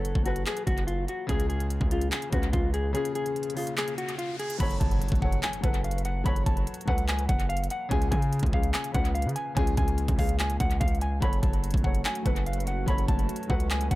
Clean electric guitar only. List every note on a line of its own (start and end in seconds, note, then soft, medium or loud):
0.00 0.23 A4 medium
0.26 0.43 F#4 medium
0.47 0.63 G#4 medium
0.67 0.84 F#4 medium
0.87 1.04 F4 medium
1.09 1.26 F#4 medium
1.29 1.46 G#4 loud
1.49 1.88 G#4 medium
1.92 2.09 F4 medium
2.12 2.29 G#4 medium
2.33 2.50 F#4 medium
2.53 2.70 F4 medium
2.74 2.91 G#4 medium
2.95 3.12 G#4 loud
3.16 3.54 G#4 medium
3.57 3.74 F4 medium
3.78 3.95 G#4 medium
3.98 4.15 F#4 medium
4.18 4.35 F4 medium
4.39 4.56 G#4 medium
4.60 4.77 B5 loud
4.80 5.19 A5 medium
5.22 5.39 F#5 medium
5.43 5.60 G#5 medium
5.63 5.80 F#5 medium
5.84 6.01 F5 medium
6.05 6.22 F#5 medium
6.26 6.43 B5 loud
6.46 6.85 A5 medium
6.88 7.05 F#5 medium
7.09 7.25 G#5 medium
7.29 7.46 F#5 medium
7.49 7.66 F5 medium
7.71 7.88 F#5 medium
7.91 8.08 G#5 loud
8.11 8.51 G#5 medium
8.54 8.71 F5 medium
8.74 8.91 G#5 medium
8.95 9.12 F#5 medium
9.15 9.32 F5 medium
9.36 9.53 G#5 medium
9.57 9.74 G#5 loud
9.78 10.16 G#5 medium
10.19 10.36 F5 medium
10.40 10.57 G#5 medium
10.60 10.77 F#5 medium
10.80 10.98 F5 medium
11.02 11.19 G#5 medium
11.22 11.39 B5 loud
11.42 11.82 A5 medium
11.84 12.01 F#5 medium
12.06 12.22 G#5 medium
12.26 12.43 F#5 medium
12.47 12.63 F5 medium
12.68 12.84 F#5 medium
12.88 13.05 B5 loud
13.09 13.47 A5 loud
13.50 13.67 F#5 medium
13.71 13.88 G#5 medium
13.91 13.95 F#5 medium